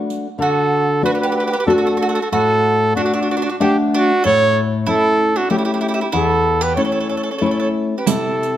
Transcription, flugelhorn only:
0, 0, Header, 1, 2, 480
1, 0, Start_track
1, 0, Key_signature, 2, "major"
1, 0, Tempo, 641026
1, 289, Time_signature, 3, 2, 24, 8
1, 6419, End_track
2, 0, Start_track
2, 0, Title_t, "Flugelhorn"
2, 0, Program_c, 0, 56
2, 305, Note_on_c, 0, 69, 91
2, 749, Note_off_c, 0, 69, 0
2, 784, Note_on_c, 0, 71, 85
2, 834, Note_off_c, 0, 71, 0
2, 851, Note_on_c, 0, 71, 68
2, 896, Note_off_c, 0, 71, 0
2, 900, Note_on_c, 0, 71, 75
2, 953, Note_off_c, 0, 71, 0
2, 964, Note_on_c, 0, 71, 63
2, 1015, Note_off_c, 0, 71, 0
2, 1025, Note_on_c, 0, 71, 72
2, 1070, Note_off_c, 0, 71, 0
2, 1092, Note_on_c, 0, 71, 65
2, 1127, Note_off_c, 0, 71, 0
2, 1133, Note_on_c, 0, 71, 78
2, 1172, Note_off_c, 0, 71, 0
2, 1181, Note_on_c, 0, 71, 66
2, 1222, Note_off_c, 0, 71, 0
2, 1246, Note_on_c, 0, 69, 87
2, 1303, Note_off_c, 0, 69, 0
2, 1308, Note_on_c, 0, 69, 66
2, 1367, Note_off_c, 0, 69, 0
2, 1372, Note_on_c, 0, 69, 76
2, 1424, Note_off_c, 0, 69, 0
2, 1428, Note_on_c, 0, 69, 66
2, 1488, Note_off_c, 0, 69, 0
2, 1503, Note_on_c, 0, 69, 74
2, 1541, Note_off_c, 0, 69, 0
2, 1545, Note_on_c, 0, 69, 69
2, 1593, Note_off_c, 0, 69, 0
2, 1597, Note_on_c, 0, 69, 78
2, 1644, Note_off_c, 0, 69, 0
2, 1661, Note_on_c, 0, 69, 69
2, 1702, Note_off_c, 0, 69, 0
2, 1737, Note_on_c, 0, 69, 104
2, 2185, Note_off_c, 0, 69, 0
2, 2215, Note_on_c, 0, 66, 99
2, 2271, Note_off_c, 0, 66, 0
2, 2277, Note_on_c, 0, 66, 74
2, 2332, Note_off_c, 0, 66, 0
2, 2355, Note_on_c, 0, 66, 76
2, 2402, Note_off_c, 0, 66, 0
2, 2407, Note_on_c, 0, 66, 65
2, 2457, Note_off_c, 0, 66, 0
2, 2474, Note_on_c, 0, 66, 76
2, 2515, Note_off_c, 0, 66, 0
2, 2529, Note_on_c, 0, 66, 66
2, 2565, Note_off_c, 0, 66, 0
2, 2584, Note_on_c, 0, 66, 74
2, 2618, Note_off_c, 0, 66, 0
2, 2627, Note_on_c, 0, 66, 66
2, 2664, Note_off_c, 0, 66, 0
2, 2711, Note_on_c, 0, 67, 90
2, 2823, Note_off_c, 0, 67, 0
2, 2975, Note_on_c, 0, 66, 103
2, 3163, Note_off_c, 0, 66, 0
2, 3183, Note_on_c, 0, 73, 127
2, 3450, Note_off_c, 0, 73, 0
2, 3658, Note_on_c, 0, 69, 111
2, 4022, Note_on_c, 0, 66, 94
2, 4033, Note_off_c, 0, 69, 0
2, 4122, Note_off_c, 0, 66, 0
2, 4126, Note_on_c, 0, 67, 86
2, 4176, Note_off_c, 0, 67, 0
2, 4180, Note_on_c, 0, 67, 62
2, 4226, Note_off_c, 0, 67, 0
2, 4231, Note_on_c, 0, 67, 77
2, 4290, Note_off_c, 0, 67, 0
2, 4293, Note_on_c, 0, 67, 74
2, 4352, Note_off_c, 0, 67, 0
2, 4356, Note_on_c, 0, 67, 78
2, 4407, Note_off_c, 0, 67, 0
2, 4411, Note_on_c, 0, 67, 71
2, 4445, Note_off_c, 0, 67, 0
2, 4450, Note_on_c, 0, 67, 74
2, 4502, Note_off_c, 0, 67, 0
2, 4506, Note_on_c, 0, 67, 68
2, 4554, Note_off_c, 0, 67, 0
2, 4597, Note_on_c, 0, 69, 95
2, 4965, Note_on_c, 0, 71, 81
2, 4976, Note_off_c, 0, 69, 0
2, 5057, Note_off_c, 0, 71, 0
2, 5062, Note_on_c, 0, 73, 81
2, 5117, Note_off_c, 0, 73, 0
2, 5121, Note_on_c, 0, 73, 57
2, 5184, Note_off_c, 0, 73, 0
2, 5200, Note_on_c, 0, 73, 65
2, 5245, Note_off_c, 0, 73, 0
2, 5250, Note_on_c, 0, 73, 56
2, 5310, Note_off_c, 0, 73, 0
2, 5319, Note_on_c, 0, 73, 58
2, 5368, Note_off_c, 0, 73, 0
2, 5375, Note_on_c, 0, 73, 51
2, 5420, Note_off_c, 0, 73, 0
2, 5423, Note_on_c, 0, 73, 52
2, 5467, Note_off_c, 0, 73, 0
2, 5471, Note_on_c, 0, 73, 46
2, 5510, Note_off_c, 0, 73, 0
2, 5515, Note_on_c, 0, 73, 55
2, 5558, Note_off_c, 0, 73, 0
2, 5562, Note_on_c, 0, 73, 52
2, 5626, Note_off_c, 0, 73, 0
2, 5633, Note_on_c, 0, 73, 60
2, 5691, Note_off_c, 0, 73, 0
2, 5695, Note_on_c, 0, 73, 63
2, 5754, Note_off_c, 0, 73, 0
2, 5980, Note_on_c, 0, 71, 56
2, 6042, Note_on_c, 0, 69, 82
2, 6053, Note_off_c, 0, 71, 0
2, 6419, Note_off_c, 0, 69, 0
2, 6419, End_track
0, 0, End_of_file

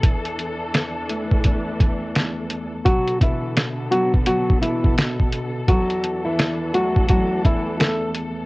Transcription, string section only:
0, 0, Header, 1, 2, 480
1, 0, Start_track
1, 0, Tempo, 705882
1, 22, Time_signature, 4, 2, 24, 8
1, 5751, End_track
2, 0, Start_track
2, 0, Title_t, "String section"
2, 0, Program_c, 0, 48
2, 0, Note_on_c, 0, 69, 92
2, 20, Note_on_c, 0, 62, 78
2, 21, Note_on_c, 0, 52, 83
2, 1915, Note_off_c, 0, 69, 0
2, 1922, Note_off_c, 0, 52, 0
2, 1922, Note_off_c, 0, 62, 0
2, 1930, Note_on_c, 0, 59, 73
2, 1931, Note_on_c, 0, 50, 84
2, 1931, Note_on_c, 0, 69, 88
2, 3837, Note_off_c, 0, 59, 0
2, 3838, Note_off_c, 0, 50, 0
2, 3859, Note_on_c, 0, 52, 77
2, 3860, Note_on_c, 0, 62, 74
2, 5751, Note_off_c, 0, 52, 0
2, 5751, Note_off_c, 0, 62, 0
2, 5751, Note_off_c, 0, 69, 0
2, 5751, End_track
0, 0, End_of_file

